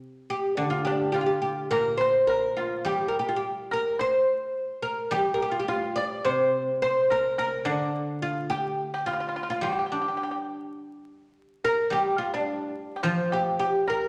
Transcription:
0.30 0.56 G4 medium
0.57 2.29 D3 medium
0.57 0.70 D4 medium
0.70 0.86 F4 medium
0.85 1.13 D4 medium
0.85 1.14 D4 medium
0.85 1.11 G4 medium
1.12 1.20 F4 medium
1.12 1.69 F4 medium
1.12 1.20 G4 medium
1.21 1.29 F4 medium
1.26 1.41 G4 medium
1.42 1.70 G4 medium
1.71 3.42 A#2 medium
1.71 1.97 A#4 medium
1.71 1.99 A#4 medium
1.97 2.27 C5 medium
1.97 2.28 C5 medium
2.27 2.58 A#4 medium
2.27 2.56 A#4 medium
2.57 2.87 F4 medium
2.57 2.85 F4 medium
2.85 4.54 G3 medium
2.85 3.05 G4 medium
2.85 3.06 G4 medium
3.08 3.17 A#4 medium
3.19 3.27 G4 medium
3.29 3.36 F4 medium
3.36 3.44 G4 medium
3.71 3.97 A#4 medium
3.71 4.00 A#4 medium
3.99 5.08 C5 medium
3.99 4.82 C5 medium
4.82 5.11 A#4 medium
5.11 6.82 G3 medium
5.11 5.31 G4 medium
5.11 5.33 G4 medium
5.34 5.42 A#4 medium
5.42 5.51 G4 medium
5.51 5.60 F4 medium
5.59 5.69 G4 medium
5.68 5.98 F4 medium
5.68 5.95 F4 medium
5.96 6.25 D5 medium
5.96 6.24 D5 medium
6.24 7.67 C3 medium
6.24 6.81 C5 medium
6.24 6.79 C5 medium
6.82 7.11 C5 medium
6.82 7.09 C5 medium
7.10 7.37 A#4 medium
7.38 7.65 A#4 medium
7.38 7.68 A#4 medium
7.65 9.34 D3 medium
7.65 8.46 D4 medium
7.65 8.22 D4 medium
8.22 8.52 F4 medium
8.50 9.03 G4 medium
8.50 8.90 G4 medium
8.94 9.07 G4 medium
9.06 9.49 F4 medium
9.06 9.12 F4 medium
9.13 9.19 F4 soft
9.20 9.27 F4 medium
9.28 9.35 F4 soft
9.36 9.42 F4 medium
9.43 9.50 F4 soft
9.50 9.64 F4 medium
9.50 9.58 F4 medium
9.61 11.34 G3 medium
9.61 10.45 G4 medium
9.61 9.70 G4 medium
9.72 9.78 G4 soft
9.79 9.85 G4 soft
9.86 9.92 G4 soft
9.92 11.07 D4 soft
9.92 10.00 G4 soft
10.01 10.07 G4 soft
10.08 10.15 G4 soft
10.17 10.22 G4 soft
10.23 10.30 G4 soft
10.31 10.38 G4 soft
11.64 11.90 A#4 medium
11.64 11.92 A#4 loud
11.90 13.59 G3 medium
11.90 12.31 G4 medium
11.90 12.18 G4 medium
12.18 12.34 F4 medium
12.34 12.73 D4 medium
12.96 13.02 G4 medium
13.03 14.08 F3 medium
13.03 13.30 F4 medium
13.03 13.34 F4 medium
13.32 13.58 G4 medium
13.59 13.89 G4 medium
13.59 13.86 G4 medium
13.88 14.08 A#4 medium

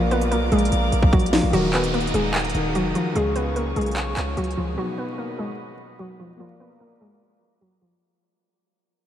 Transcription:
0.00 0.33 A#1 loud
0.00 1.48 A#3 medium
0.00 1.49 A#4 medium
0.00 1.52 A#4 medium
0.00 1.51 D5 medium
0.00 1.52 D5 medium
0.00 1.52 F5 medium
0.00 1.52 D6 medium
0.11 0.29 B3 medium
0.11 0.28 B4 medium
0.11 closed hi-hat soft
0.21 closed hi-hat medium
0.31 0.51 B1 loud
0.31 0.49 A#3 medium
0.31 0.49 A#4 medium
0.31 closed hi-hat medium
0.52 0.71 A#1 loud
0.52 1.09 G#3 medium
0.52 1.09 G#4 medium
0.52 closed hi-hat soft
0.59 closed hi-hat medium
0.65 closed hi-hat medium
0.72 0.92 A#1 loud
0.72 closed hi-hat medium
0.92 1.41 A#1 loud
0.92 closed hi-hat medium
1.02 kick medium
1.13 1.30 F#3 medium
1.13 1.30 F#4 medium
1.13 kick loud
1.13 closed hi-hat soft
1.19 closed hi-hat medium
1.26 closed hi-hat medium
1.33 1.50 F3 medium
1.33 1.50 F4 medium
1.33 snare loud
1.33 open hi-hat medium
1.43 1.53 A#1 loud
1.50 2.12 D#1 loud
1.50 2.51 D#3 medium
1.50 2.52 D#4 medium
1.50 1.70 F#4 loud
1.50 3.14 A#4 medium
1.50 3.14 D#5 medium
1.50 3.14 F#5 medium
1.50 3.14 D#6 medium
1.50 closed hi-hat medium
1.50 downlifter medium
1.54 1.71 F#3 medium
1.54 2.53 F#4 medium
1.54 2.54 A#4 medium
1.73 1.91 B3 medium
1.73 1.91 B4 medium
1.73 clap medium
1.73 closed hi-hat soft
1.84 closed hi-hat medium
1.94 2.11 A#3 medium
1.94 2.11 A#4 medium
1.94 closed hi-hat soft
2.01 closed hi-hat soft
2.07 closed hi-hat medium
2.14 2.53 D#1 loud
2.14 2.72 G#3 medium
2.14 2.71 G#4 medium
2.14 closed hi-hat medium
2.34 clap loud
2.34 closed hi-hat soft
2.39 closed hi-hat medium
2.45 closed hi-hat medium
2.50 3.15 D#3 soft
2.50 closed hi-hat medium
2.54 2.76 D#1 loud
2.54 3.15 D#4 medium
2.54 3.16 F#4 soft
2.54 3.16 A#4 medium
2.54 closed hi-hat medium
2.75 2.94 F1 loud
2.75 2.93 F#3 medium
2.75 2.92 F#4 medium
2.75 closed hi-hat medium
2.95 3.13 F3 medium
2.95 3.12 F4 medium
2.95 closed hi-hat medium
3.12 3.74 C#2 loud
3.12 4.73 C#3 medium
3.12 4.74 C#4 medium
3.12 4.76 G#4 medium
3.12 3.33 G#4 loud
3.12 4.76 C#5 medium
3.12 4.76 F5 medium
3.12 4.76 C#6 medium
3.12 closed hi-hat medium
3.17 3.33 G#3 medium
3.17 4.75 F4 medium
3.17 4.76 G#4 medium
3.36 3.53 B3 medium
3.36 3.53 B4 medium
3.36 closed hi-hat medium
3.56 3.74 A#3 medium
3.56 3.73 A#4 medium
3.56 closed hi-hat medium
3.76 4.15 B1 loud
3.76 4.34 G#3 medium
3.76 4.33 G#4 medium
3.76 closed hi-hat medium
3.81 closed hi-hat medium
3.86 closed hi-hat medium
3.91 closed hi-hat medium
3.96 clap loud
3.96 closed hi-hat medium
4.17 4.36 C#2 loud
4.17 clap loud
4.17 closed hi-hat medium
4.37 4.57 C#2 loud
4.37 4.55 F#3 medium
4.37 4.54 F#4 medium
4.37 closed hi-hat medium
4.44 closed hi-hat medium
4.51 closed hi-hat medium
4.57 4.77 C#2 loud
4.57 4.75 F3 medium
4.57 4.74 F4 medium
4.74 6.35 B2 medium
4.74 6.36 B3 medium
4.74 4.95 F#4 loud
4.74 6.38 B4 medium
4.74 6.38 D#5 medium
4.74 6.38 F#5 medium
4.74 6.38 D#6 medium
4.78 4.95 F#3 medium
4.78 6.37 D#4 medium
4.78 6.38 F#4 medium
4.98 5.15 B3 medium
4.98 5.15 B4 medium
5.18 5.36 A#3 medium
5.18 5.35 A#4 medium
5.39 5.96 G#3 medium
5.39 5.96 G#4 medium
5.99 6.17 F#3 medium
5.99 6.16 F#4 medium
6.20 6.37 F3 medium
6.20 6.37 F4 medium
6.36 7.97 A#3 medium
6.36 6.57 F4 loud
6.36 7.98 A#4 medium
6.36 8.00 A#4 medium
6.36 8.00 D5 medium
6.36 8.00 F5 medium
6.36 8.00 D6 medium
6.40 6.57 F3 medium
6.40 7.99 D5 medium
6.40 8.00 F5 medium
6.60 6.78 B3 medium
6.60 6.77 B4 medium
6.80 6.98 A#3 medium
6.80 6.97 A#4 medium
7.01 7.58 G#3 medium
7.01 7.58 G#4 medium
7.61 7.79 F#3 medium
7.61 7.78 F#4 medium
7.82 7.99 F3 medium
7.82 7.99 F4 medium

